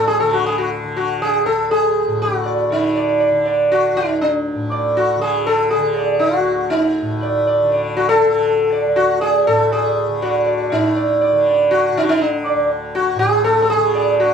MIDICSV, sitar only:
0, 0, Header, 1, 2, 480
1, 0, Start_track
1, 0, Key_signature, 2, "major"
1, 0, Tempo, 500000
1, 666, Time_signature, 4, 2, 24, 8
1, 13764, End_track
2, 0, Start_track
2, 0, Title_t, "Sitar"
2, 0, Program_c, 0, 104
2, 73, Note_on_c, 0, 68, 82
2, 188, Note_off_c, 0, 68, 0
2, 192, Note_on_c, 0, 69, 77
2, 312, Note_off_c, 0, 69, 0
2, 319, Note_on_c, 0, 66, 77
2, 435, Note_off_c, 0, 66, 0
2, 443, Note_on_c, 0, 68, 76
2, 553, Note_off_c, 0, 68, 0
2, 557, Note_on_c, 0, 66, 72
2, 664, Note_off_c, 0, 66, 0
2, 927, Note_on_c, 0, 66, 75
2, 1165, Note_off_c, 0, 66, 0
2, 1169, Note_on_c, 0, 68, 84
2, 1399, Note_off_c, 0, 68, 0
2, 1403, Note_on_c, 0, 69, 85
2, 1639, Note_off_c, 0, 69, 0
2, 1642, Note_on_c, 0, 68, 81
2, 2126, Note_off_c, 0, 68, 0
2, 2130, Note_on_c, 0, 66, 69
2, 2358, Note_on_c, 0, 74, 33
2, 2571, Note_off_c, 0, 66, 0
2, 2580, Note_off_c, 0, 74, 0
2, 2613, Note_on_c, 0, 63, 63
2, 2836, Note_on_c, 0, 74, 37
2, 3060, Note_off_c, 0, 74, 0
2, 3073, Note_on_c, 0, 74, 33
2, 3289, Note_off_c, 0, 63, 0
2, 3299, Note_off_c, 0, 74, 0
2, 3317, Note_on_c, 0, 74, 33
2, 3541, Note_off_c, 0, 74, 0
2, 3568, Note_on_c, 0, 66, 83
2, 3809, Note_on_c, 0, 63, 78
2, 3811, Note_off_c, 0, 66, 0
2, 4042, Note_off_c, 0, 63, 0
2, 4045, Note_on_c, 0, 62, 62
2, 4491, Note_off_c, 0, 62, 0
2, 4527, Note_on_c, 0, 74, 35
2, 4749, Note_off_c, 0, 74, 0
2, 4769, Note_on_c, 0, 66, 81
2, 5002, Note_off_c, 0, 66, 0
2, 5006, Note_on_c, 0, 68, 83
2, 5243, Note_off_c, 0, 68, 0
2, 5247, Note_on_c, 0, 69, 86
2, 5473, Note_off_c, 0, 69, 0
2, 5477, Note_on_c, 0, 68, 77
2, 5725, Note_on_c, 0, 74, 37
2, 5942, Note_off_c, 0, 68, 0
2, 5946, Note_on_c, 0, 66, 74
2, 5948, Note_off_c, 0, 74, 0
2, 6433, Note_on_c, 0, 63, 73
2, 6451, Note_off_c, 0, 66, 0
2, 6937, Note_on_c, 0, 74, 35
2, 7121, Note_off_c, 0, 63, 0
2, 7155, Note_off_c, 0, 74, 0
2, 7170, Note_on_c, 0, 74, 33
2, 7391, Note_off_c, 0, 74, 0
2, 7410, Note_on_c, 0, 74, 31
2, 7631, Note_off_c, 0, 74, 0
2, 7648, Note_on_c, 0, 66, 82
2, 7759, Note_off_c, 0, 66, 0
2, 7765, Note_on_c, 0, 69, 95
2, 8375, Note_on_c, 0, 74, 35
2, 8447, Note_off_c, 0, 69, 0
2, 8594, Note_off_c, 0, 74, 0
2, 8601, Note_on_c, 0, 66, 86
2, 8839, Note_off_c, 0, 66, 0
2, 8843, Note_on_c, 0, 68, 85
2, 8846, Note_on_c, 0, 74, 34
2, 9068, Note_off_c, 0, 74, 0
2, 9088, Note_off_c, 0, 68, 0
2, 9092, Note_on_c, 0, 69, 86
2, 9331, Note_off_c, 0, 69, 0
2, 9335, Note_on_c, 0, 68, 78
2, 9337, Note_on_c, 0, 74, 32
2, 9552, Note_off_c, 0, 74, 0
2, 9809, Note_off_c, 0, 68, 0
2, 9813, Note_on_c, 0, 66, 63
2, 9814, Note_on_c, 0, 74, 30
2, 10030, Note_off_c, 0, 74, 0
2, 10042, Note_on_c, 0, 74, 33
2, 10265, Note_off_c, 0, 74, 0
2, 10291, Note_on_c, 0, 63, 69
2, 10301, Note_off_c, 0, 66, 0
2, 10525, Note_on_c, 0, 74, 36
2, 10745, Note_off_c, 0, 74, 0
2, 10764, Note_on_c, 0, 74, 37
2, 10966, Note_off_c, 0, 63, 0
2, 10984, Note_off_c, 0, 74, 0
2, 11004, Note_on_c, 0, 74, 35
2, 11224, Note_off_c, 0, 74, 0
2, 11240, Note_on_c, 0, 66, 83
2, 11485, Note_off_c, 0, 66, 0
2, 11495, Note_on_c, 0, 63, 82
2, 11545, Note_on_c, 0, 66, 71
2, 11547, Note_off_c, 0, 63, 0
2, 11601, Note_off_c, 0, 66, 0
2, 11607, Note_on_c, 0, 63, 87
2, 11722, Note_off_c, 0, 63, 0
2, 11726, Note_on_c, 0, 62, 63
2, 11958, Note_on_c, 0, 74, 36
2, 12165, Note_off_c, 0, 62, 0
2, 12179, Note_off_c, 0, 74, 0
2, 12432, Note_on_c, 0, 66, 88
2, 12659, Note_off_c, 0, 66, 0
2, 12663, Note_on_c, 0, 68, 98
2, 12902, Note_off_c, 0, 68, 0
2, 12906, Note_on_c, 0, 69, 91
2, 13066, Note_off_c, 0, 69, 0
2, 13078, Note_on_c, 0, 69, 74
2, 13146, Note_off_c, 0, 69, 0
2, 13150, Note_on_c, 0, 68, 92
2, 13392, Note_on_c, 0, 74, 41
2, 13611, Note_off_c, 0, 74, 0
2, 13626, Note_off_c, 0, 68, 0
2, 13630, Note_on_c, 0, 66, 79
2, 13764, Note_off_c, 0, 66, 0
2, 13764, End_track
0, 0, End_of_file